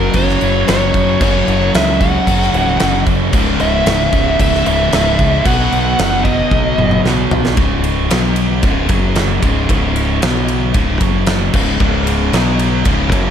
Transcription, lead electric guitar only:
0.00 0.17 A#4 medium
0.16 0.68 C#5 loud
0.69 1.21 C#5 medium
1.22 1.71 C#5 loud
1.75 1.99 E5 loud
2.01 3.03 F#5 medium
3.61 4.40 E5 loud
4.41 4.65 E5 loud
4.67 5.49 E5 loud
5.46 6.28 F#5 loud
6.24 7.00 D#5 medium

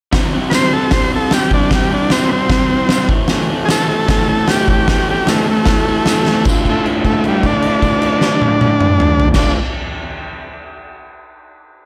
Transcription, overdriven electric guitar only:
0.12 0.33 C3 medium
0.12 0.34 G3 medium
0.12 0.34 C4 loud
0.33 0.53 C3 medium
0.33 0.53 G3 medium
0.33 0.54 C4 loud
0.53 0.71 C3 medium
0.53 0.72 G3 medium
0.53 0.74 C4 loud
0.73 0.91 C3 medium
0.73 0.91 G3 medium
0.73 0.92 C4 medium
0.92 1.11 C3 medium
0.92 1.12 G3 loud
0.92 1.13 C4 loud
1.12 1.30 C3 medium
1.12 1.32 G3 medium
1.12 1.32 C4 medium
1.32 1.51 C3 loud
1.32 1.52 G3 loud
1.32 1.53 C4 loud
1.52 1.70 C3 medium
1.52 1.71 G3 medium
1.52 1.73 C4 medium
1.71 1.89 C3 medium
1.71 1.90 G3 loud
1.71 1.90 C4 loud
1.90 2.09 C3 medium
1.90 2.09 G3 medium
1.90 2.10 C4 loud
2.10 2.28 C3 medium
2.10 2.29 G3 loud
2.10 2.30 C4 loud
2.29 2.47 C3 medium
2.29 2.48 G3 loud
2.29 2.49 C4 medium
2.49 2.69 C3 loud
2.49 2.70 G3 medium
2.49 2.71 C4 loud
2.70 2.88 C3 medium
2.70 2.88 G3 medium
2.70 2.89 C4 medium
2.89 3.08 C3 loud
2.89 3.08 G3 loud
2.89 3.09 C4 loud
3.10 3.28 A2 loud
3.10 3.29 E3 loud
3.10 3.30 A3 loud
3.29 3.48 A2 medium
3.29 3.49 E3 loud
3.29 3.49 A3 loud
3.49 3.68 A2 medium
3.49 3.68 E3 medium
3.49 3.70 A3 loud
3.68 3.87 A2 medium
3.68 3.88 E3 loud
3.68 3.89 A3 medium
3.87 4.06 A2 medium
3.87 4.08 E3 medium
3.87 4.09 A3 loud
4.08 4.25 A2 loud
4.08 4.26 E3 loud
4.08 4.28 A3 loud
4.26 4.46 A2 medium
4.26 4.47 E3 medium
4.26 4.49 A3 loud
4.47 4.66 A2 loud
4.47 4.67 E3 medium
4.47 4.69 A3 loud
4.67 4.86 A2 medium
4.67 4.86 E3 loud
4.67 4.87 A3 loud
4.87 5.06 A2 medium
4.87 5.07 E3 loud
4.87 5.08 A3 loud
5.07 5.25 A2 medium
5.07 5.25 E3 medium
5.07 5.26 A3 loud
5.26 5.44 A2 medium
5.26 5.46 E3 loud
5.26 5.46 A3 loud
5.46 5.65 A2 medium
5.46 5.66 E3 medium
5.46 5.66 A3 medium
5.66 5.84 A2 loud
5.66 5.86 E3 medium
5.66 5.87 A3 loud
5.86 6.04 A2 medium
5.86 6.05 E3 medium
5.86 6.07 A3 loud
6.05 6.25 A2 loud
6.05 6.25 E3 loud
6.05 6.26 A3 loud
6.26 6.45 A2 medium
6.26 6.45 E3 medium
6.26 6.46 A3 medium
6.45 9.34 D2 loud
6.45 9.36 A2 medium
6.45 9.36 D3 loud
6.45 9.37 A3 loud
6.50 9.37 F4 loud
9.34 9.53 D2 loud
9.34 9.54 A2 loud
9.34 9.54 D3 loud
9.34 9.55 A3 loud
9.34 9.55 F4 loud

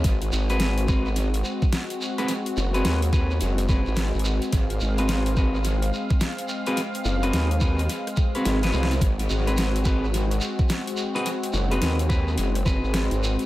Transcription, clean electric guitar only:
0.50 0.86 C4 medium
0.50 0.86 F#4 medium
0.50 0.86 G#4 medium
0.50 0.86 B4 medium
0.88 1.08 C4 medium
0.88 1.08 F#4 medium
0.88 1.08 G#4 medium
0.88 1.08 B4 loud
2.18 2.32 C4 medium
2.18 2.32 F#4 medium
2.18 2.32 G#4 medium
2.18 2.32 B4 loud
2.74 3.00 C4 medium
2.74 3.00 F#4 medium
2.74 3.00 G#4 medium
2.74 3.00 B4 loud
3.13 3.32 C4 medium
3.13 3.32 F#4 medium
3.13 3.32 G#4 medium
3.13 3.32 B4 medium
3.69 4.95 C4 medium
3.69 4.95 F#4 medium
3.69 4.95 G#4 medium
3.69 4.95 B4 medium
4.99 5.35 C4 medium
4.99 5.35 F#4 medium
4.99 5.35 G#4 medium
4.99 5.35 B4 medium
5.37 5.57 C4 medium
5.37 5.57 F#4 medium
5.37 5.57 G#4 medium
5.37 5.57 B4 loud
6.67 6.80 C4 medium
6.67 6.80 F#4 medium
6.67 6.80 G#4 medium
6.67 6.80 B4 loud
7.23 7.49 C4 medium
7.23 7.49 F#4 medium
7.23 7.49 G#4 medium
7.23 7.49 B4 loud
7.62 7.81 C4 medium
7.62 7.81 F#4 medium
7.62 7.81 G#4 medium
7.62 7.81 B4 medium
8.35 8.59 C4 medium
8.35 8.59 F#4 medium
8.35 8.59 G#4 medium
8.35 8.59 B4 loud
8.63 8.71 C4 medium
8.63 8.71 F#4 medium
8.63 8.71 G#4 medium
8.63 8.71 B4 medium
8.73 8.93 C4 medium
8.73 8.93 F#4 medium
8.73 8.93 G#4 medium
8.73 8.93 B4 medium
9.47 9.83 C4 medium
9.47 9.83 F#4 medium
9.47 9.83 G#4 medium
9.47 9.83 B4 medium
9.86 10.05 C4 medium
9.86 10.05 F#4 medium
9.86 10.05 G#4 medium
9.86 10.05 B4 loud
11.15 11.29 C4 medium
11.15 11.29 F#4 medium
11.15 11.29 G#4 medium
11.15 11.29 B4 loud
11.71 11.97 C4 medium
11.71 11.97 F#4 medium
11.71 11.97 G#4 medium
11.71 11.97 B4 loud
12.09 12.29 C4 medium
12.09 12.29 F#4 medium
12.09 12.29 G#4 medium
12.09 12.29 B4 loud
12.66 13.46 C4 medium
12.66 13.46 F#4 medium
12.66 13.46 G#4 medium
12.66 13.46 B4 medium

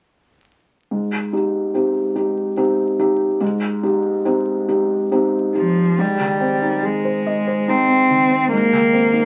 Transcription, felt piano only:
0.91 1.32 G#2 soft
1.33 1.71 D#4 soft
1.33 1.71 G4 soft
1.74 2.12 C4 soft
1.74 2.13 D#4 soft
1.74 2.13 G4 soft
2.15 2.54 D#4 soft
2.15 2.54 G4 soft
2.57 2.95 C4 soft
2.57 2.95 D#4 soft
2.57 2.96 G4 soft
2.99 3.37 D#4 soft
2.99 3.37 G4 soft
3.41 3.81 G#2 soft
3.83 4.22 D#4 soft
3.83 4.22 G4 soft
4.25 4.64 C4 soft
4.25 4.65 D#4 soft
4.25 4.65 G4 soft
4.68 5.08 D#4 soft
4.68 5.08 G4 soft
5.12 5.52 C4 soft
5.12 5.52 D#4 soft
5.12 5.52 G4 soft
5.54 5.94 D#4 soft
5.54 5.95 G4 soft
5.98 8.47 G#2 soft
6.20 6.54 D#3 soft
6.41 6.75 C4 soft
6.62 6.96 D#4 soft
6.83 7.17 G#4 soft
7.05 7.39 C5 soft
7.27 7.60 D#5 soft
7.47 7.81 C5 soft
7.68 8.01 D#4 soft
7.88 8.22 C4 soft
8.10 8.43 D#3 soft
8.31 8.65 C4 soft
8.52 9.25 G#2 soft
8.73 9.06 D#3 soft
8.93 9.25 C4 soft
9.13 9.25 D#4 soft

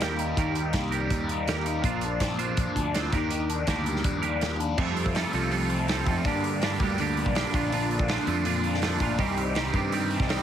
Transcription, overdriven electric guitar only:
0.00 0.74 G3 medium
0.00 0.75 A#3 medium
0.00 0.18 D#4 medium
0.19 0.54 D#4 medium
0.38 1.30 D#3 medium
0.55 1.09 D#4 medium
0.75 1.49 A#3 medium
0.93 1.28 G3 medium
1.11 1.65 D#4 medium
1.29 1.84 G3 medium
1.49 2.21 A#3 medium
1.66 1.85 D#4 medium
1.84 2.76 A#2 medium
2.04 2.56 D4 medium
2.22 2.93 C4 medium
2.39 2.74 F3 medium
2.58 3.13 D4 medium
2.75 3.13 F3 medium
2.95 3.13 C4 medium
3.13 3.30 D#3 medium
3.31 4.23 D#3 medium
3.49 4.03 D4 medium
3.68 4.40 A#3 medium
3.86 4.23 G3 medium
4.04 4.58 D4 medium
4.24 4.77 G3 medium
4.41 4.78 A#3 medium
4.59 4.78 D4 medium
4.77 5.13 F2 loud
4.77 5.13 C3 loud
4.77 5.14 F3 loud
4.77 5.14 A3 medium
4.77 5.14 C4 loud
5.14 5.31 F2 medium
5.14 5.32 C3 medium
5.14 5.32 F3 medium
5.14 5.32 A3 loud
5.14 5.33 C4 medium
5.33 5.49 F2 medium
5.33 5.49 C3 loud
5.33 5.50 F3 medium
5.33 5.50 A3 loud
5.33 5.51 C4 medium
5.50 5.86 F2 loud
5.50 5.87 C3 medium
5.50 5.88 F3 loud
5.50 5.88 A3 loud
5.50 5.88 C4 loud
5.87 6.05 F2 medium
5.87 6.06 C3 medium
5.87 6.06 F3 medium
5.87 6.06 A3 medium
5.87 6.06 C4 loud
6.06 6.24 F2 medium
6.06 6.24 C3 medium
6.06 6.24 F3 medium
6.06 6.24 A3 loud
6.06 6.24 C4 loud
6.25 6.60 G2 medium
6.25 6.61 D3 medium
6.25 6.61 G3 loud
6.25 6.62 A#3 loud
6.25 6.63 D4 loud
6.61 6.79 G2 medium
6.61 6.79 D3 medium
6.61 6.79 G3 medium
6.61 6.80 A#3 loud
6.61 6.81 D4 loud
6.80 6.97 G2 medium
6.80 6.97 D3 loud
6.80 6.98 G3 loud
6.80 6.98 A#3 loud
6.80 6.99 D4 loud
6.98 7.34 G2 loud
6.98 7.34 D3 loud
6.98 7.35 G3 loud
6.98 7.35 A#3 loud
6.98 7.35 D4 loud
7.35 7.53 G2 medium
7.35 7.53 D3 medium
7.35 7.53 G3 medium
7.35 7.53 A#3 loud
7.35 7.53 D4 loud
7.53 7.71 A#2 loud
7.53 7.72 D3 loud
7.53 7.71 F3 loud
7.53 7.72 A#3 loud
7.53 7.72 D4 loud
7.72 8.08 A#2 loud
7.72 8.08 D3 loud
7.72 8.08 F3 loud
7.72 8.09 A#3 loud
7.72 8.09 D4 medium
8.09 8.25 A#2 medium
8.09 8.25 D3 medium
8.09 8.26 F3 loud
8.09 8.26 A#3 loud
8.09 8.26 D4 loud
8.26 8.43 A#2 loud
8.26 8.44 D3 medium
8.26 8.44 F3 loud
8.26 8.44 A#3 loud
8.26 8.45 D4 loud
8.44 8.80 A#2 loud
8.44 8.81 D3 loud
8.44 8.81 F3 loud
8.44 8.82 A#3 loud
8.44 8.82 D4 loud
8.81 9.00 A#2 loud
8.81 9.01 D3 loud
8.81 9.02 F3 loud
8.81 9.01 A#3 loud
8.81 9.02 D4 loud
9.01 9.18 A#2 medium
9.01 9.18 D3 medium
9.01 9.19 F3 loud
9.01 9.19 A#3 loud
9.01 9.19 D4 loud
9.19 9.55 C3 medium
9.19 9.56 G3 medium
9.19 9.56 C4 loud
9.19 9.56 D#4 loud
9.56 9.73 C3 medium
9.56 9.74 G3 medium
9.56 9.75 C4 medium
9.56 9.75 D#4 loud
9.74 9.92 C3 medium
9.74 9.93 G3 medium
9.74 9.93 C4 loud
9.74 9.93 D#4 loud
9.93 10.29 C3 loud
9.93 10.30 G3 loud
9.93 10.30 C4 loud
9.93 10.30 D#4 loud
10.30 10.43 C3 medium
10.30 10.43 G3 loud
10.30 10.43 C4 medium
10.30 10.43 D#4 loud

